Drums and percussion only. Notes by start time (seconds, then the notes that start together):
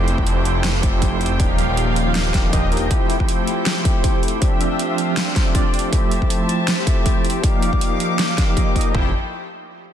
0.08 closed hi-hat
0.18 kick
0.27 closed hi-hat
0.45 closed hi-hat
0.64 snare, closed hi-hat
0.83 kick, closed hi-hat
1.02 kick, closed hi-hat
1.21 closed hi-hat
1.26 closed hi-hat
1.40 kick, closed hi-hat
1.59 closed hi-hat
1.77 closed hi-hat
1.96 closed hi-hat
2.15 snare, closed hi-hat
2.34 kick, snare, closed hi-hat
2.53 kick, closed hi-hat
2.72 closed hi-hat
2.77 closed hi-hat
2.91 kick, closed hi-hat
3.10 closed hi-hat
3.20 kick
3.29 closed hi-hat
3.47 closed hi-hat
3.66 snare, closed hi-hat
3.85 kick, closed hi-hat
4.04 kick, closed hi-hat
4.23 closed hi-hat
4.28 closed hi-hat
4.42 kick, closed hi-hat
4.61 closed hi-hat
4.79 closed hi-hat
4.98 closed hi-hat
5.17 snare, closed hi-hat
5.36 kick, snare, closed hi-hat
5.55 kick, closed hi-hat
5.74 closed hi-hat
5.79 closed hi-hat
5.93 kick, closed hi-hat
6.11 closed hi-hat
6.22 kick
6.30 closed hi-hat
6.49 closed hi-hat
6.68 snare, closed hi-hat
6.87 kick, closed hi-hat
7.06 kick, closed hi-hat
7.25 closed hi-hat
7.30 closed hi-hat
7.44 kick, closed hi-hat
7.62 closed hi-hat
7.73 kick
7.81 closed hi-hat
8.00 closed hi-hat
8.19 snare, closed hi-hat
8.38 kick, snare, closed hi-hat
8.57 kick, closed hi-hat
8.76 kick, closed hi-hat
8.81 closed hi-hat
8.95 kick